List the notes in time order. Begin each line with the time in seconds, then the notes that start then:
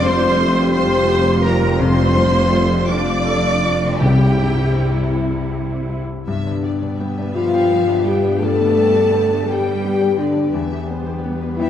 Already playing: F1 F2 G3 F4 G4
0.02 C3 C5 C6
0.40 A3
0.72 G3 F4 C5 C6
1.09 G4
1.43 F4 A#4 A#5
1.62 F2
1.67 F3
1.71 F4
1.75 F4 A4 C5
1.79 F2 A3 F4 C5 C6
2.15 F3 G3
2.51 F3 A3
2.88 A3 D4 F4 D5 D6
3.26 A4
3.63 F4
3.84 C3
3.89 G3
3.93 E4
3.98 C2 C3 G3 E4 G4 G5
4.02 C3
4.38 G2
4.76 C4
5.14 E4
5.51 G4
5.90 E4
6.26 G2 G3 B3 E5
6.46 D3 D4
6.63 G3 G4 D5
6.82 B2 D4
6.97 B3 G4 E5
7.18 A3 D4
7.35 F3 F4 G4 F5 B5
7.53 D4 G5
7.71 B3 A4
7.88 D4 G4
8.05 G3 D4 G4 G5
8.24 G3 D4
8.39 G2 A3 A4 D5 A5
8.60 D3 B3
8.77 G3 G4
8.95 D4
9.14 B3 G4
9.32 D4
9.46 G3 G4 B4 D5 G5
9.50 G4
9.65 D4 G5
9.84 B3
10.01 D4 G4
10.18 D3 D4 G4 D5
10.35 G3 D4
10.53 E2 E3 G3 B3 E5
10.70 G3 G4
10.88 B3 C5
11.06 G4
11.23 B3 B4
11.41 G4 B4
11.58 E3 B3 E4 E5 G5